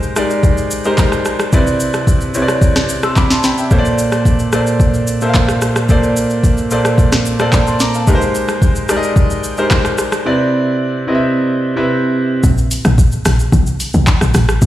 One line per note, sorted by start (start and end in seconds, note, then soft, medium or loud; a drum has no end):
0.00 0.17 G#3 medium
0.00 0.17 D#4 medium
0.00 0.17 G4 medium
0.00 0.17 A#4 medium
0.00 0.86 C5 medium
0.00 shaker medium
0.16 0.71 G#3 medium
0.16 0.71 D#4 medium
0.16 0.71 G4 medium
0.16 0.71 A#4 medium
0.16 0.71 D5 medium
0.16 cross-stick medium
0.16 shaker medium
0.30 shaker medium
0.43 kick loud
0.43 shaker medium
0.58 shaker medium
0.71 shaker loud
0.85 1.40 G#3 medium
0.85 1.40 D#4 medium
0.85 1.40 G4 medium
0.85 1.40 A#4 medium
0.85 1.40 C5 medium
0.85 shaker medium
0.98 kick loud
0.98 clap medium
0.98 shaker medium
1.12 cross-stick medium
1.12 shaker medium
1.25 cross-stick medium
1.25 shaker medium
1.40 cross-stick loud
1.40 shaker medium
1.53 2.19 C3 medium
1.53 2.19 C4 medium
1.53 2.19 E4 medium
1.53 2.19 B4 medium
1.53 2.19 D5 medium
1.53 kick loud
1.53 shaker medium
1.67 shaker medium
1.80 shaker loud
1.94 cross-stick medium
1.94 shaker medium
2.07 kick medium
2.07 shaker medium
2.21 shaker medium
2.34 2.89 C3 medium
2.34 2.89 C4 medium
2.34 2.89 E4 medium
2.34 2.89 B4 medium
2.34 2.42 C#5 medium
2.34 shaker medium
2.42 2.93 D5 medium
2.48 cross-stick medium
2.48 shaker medium
2.62 kick loud
2.62 shaker medium
2.76 cross-stick loud
2.76 snare medium
2.76 shaker medium
2.89 shaker loud
3.03 3.16 C6 medium
3.03 3.16 E6 medium
3.03 cross-stick loud
3.03 shaker soft
3.16 3.30 B5 medium
3.16 3.30 D6 medium
3.16 kick medium
3.16 clap medium
3.16 shaker medium
3.30 3.44 A5 medium
3.30 3.43 C6 medium
3.30 snare medium
3.30 shaker medium
3.43 3.57 G5 medium
3.43 3.57 B5 medium
3.43 snare medium
3.43 shaker medium
3.58 3.84 E5 medium
3.58 3.84 G5 medium
3.58 shaker medium
3.71 4.37 A#2 medium
3.71 4.37 A#3 medium
3.71 4.37 A4 medium
3.71 4.37 C5 medium
3.71 3.78 C#5 medium
3.71 kick loud
3.71 shaker medium
3.78 4.41 D5 loud
3.85 shaker medium
3.98 shaker loud
4.12 cross-stick medium
4.12 shaker medium
4.25 kick medium
4.25 shaker medium
4.39 shaker medium
4.52 5.07 A#2 medium
4.52 5.07 A#3 medium
4.52 5.08 A4 medium
4.52 5.08 C5 medium
4.52 5.08 D5 medium
4.52 cross-stick loud
4.52 shaker medium
4.67 shaker medium
4.80 kick loud
4.80 shaker medium
4.94 shaker medium
5.07 shaker loud
5.21 5.76 A#2 medium
5.21 5.76 A#3 medium
5.21 5.76 A4 medium
5.21 5.77 C5 medium
5.21 5.28 E5 medium
5.21 shaker soft
5.29 5.80 F5 medium
5.34 kick medium
5.34 clap medium
5.34 shaker medium
5.48 cross-stick loud
5.48 shaker medium
5.62 cross-stick medium
5.62 shaker medium
5.76 cross-stick loud
5.76 shaker medium
5.89 6.55 A#2 medium
5.89 6.55 A#3 medium
5.89 6.55 A4 medium
5.89 6.56 C5 medium
5.89 6.56 D5 medium
5.89 kick loud
5.89 shaker medium
6.03 shaker medium
6.17 shaker loud
6.30 shaker medium
6.44 kick medium
6.44 shaker medium
6.58 shaker medium
6.71 7.26 A#2 medium
6.71 7.26 A#3 medium
6.71 7.26 A4 medium
6.71 7.26 C5 medium
6.71 7.26 D5 medium
6.71 shaker medium
6.85 cross-stick loud
6.85 shaker medium
6.98 kick loud
6.98 shaker medium
7.12 cross-stick loud
7.12 snare medium
7.12 shaker medium
7.26 shaker loud
7.39 7.94 A#2 medium
7.39 7.94 A#3 medium
7.39 7.94 A4 medium
7.39 7.95 C5 medium
7.39 7.95 D5 loud
7.39 cross-stick loud
7.39 shaker soft
7.53 7.67 F5 medium
7.53 7.67 A5 medium
7.53 kick medium
7.53 clap loud
7.53 shaker medium
7.67 7.80 A5 medium
7.67 7.80 C6 medium
7.67 shaker medium
7.80 7.94 A#5 medium
7.80 7.94 D6 medium
7.80 snare medium
7.80 shaker medium
7.94 8.21 F5 medium
7.94 8.20 A5 medium
7.94 shaker medium
8.07 8.73 G#3 medium
8.07 8.73 D#4 medium
8.07 8.73 G4 medium
8.07 8.74 A#4 medium
8.07 8.15 B4 medium
8.07 kick loud
8.07 shaker medium
8.15 8.77 C5 loud
8.22 shaker medium
8.35 shaker loud
8.48 cross-stick medium
8.48 shaker medium
8.62 kick medium
8.62 shaker medium
8.76 shaker medium
8.89 9.44 G#3 medium
8.89 9.44 D#4 medium
8.89 9.44 G4 medium
8.89 9.44 A#4 medium
8.89 8.96 D5 medium
8.89 cross-stick loud
8.89 shaker medium
8.97 9.47 D#5 medium
9.03 shaker medium
9.16 kick loud
9.16 shaker medium
9.30 shaker medium
9.44 shaker loud
9.57 10.12 G#3 medium
9.57 10.13 D#4 medium
9.57 10.13 G4 medium
9.57 10.13 A#4 medium
9.57 10.13 C5 medium
9.57 shaker soft
9.71 kick medium
9.71 clap loud
9.71 shaker medium
9.85 cross-stick loud
9.85 shaker medium
9.98 cross-stick medium
9.98 shaker medium
10.12 cross-stick loud
10.12 shaker medium
10.25 10.91 C3 medium
10.25 10.91 C4 medium
10.25 10.92 E4 medium
10.25 10.92 B4 medium
10.25 10.92 D5 medium
11.07 11.62 C3 medium
11.07 11.62 C4 medium
11.07 11.62 E4 medium
11.07 11.62 B4 medium
11.07 11.15 D#5 medium
11.15 11.66 E5 medium
11.76 12.31 C3 medium
11.76 12.31 C4 medium
11.76 12.31 E4 medium
11.76 12.31 B4 medium
11.76 12.31 E5 medium
12.44 12.81 A#1 loud
12.44 kick loud
12.44 shaker medium
12.58 shaker medium
12.71 open hi-hat medium
12.71 shaker loud
12.85 13.21 A#1 loud
12.85 cross-stick medium
12.85 shaker medium
12.98 kick medium
12.98 shaker medium
13.12 shaker medium
13.25 13.50 A#1 medium
13.25 cross-stick loud
13.25 open hi-hat medium
13.25 shaker loud
13.39 shaker medium
13.52 13.90 C2 loud
13.52 kick loud
13.52 shaker medium
13.67 shaker medium
13.80 open hi-hat medium
13.80 shaker loud
13.94 14.06 C2 loud
13.94 shaker soft
14.07 kick loud
14.07 clap loud
14.07 shaker medium
14.21 14.33 A#1 medium
14.21 cross-stick loud
14.21 shaker medium
14.34 14.59 A1 loud
14.34 cross-stick medium
14.34 open hi-hat medium
14.34 shaker medium
14.49 cross-stick loud
14.49 shaker medium
14.62 14.66 A#1 loud
14.62 kick loud
14.62 shaker medium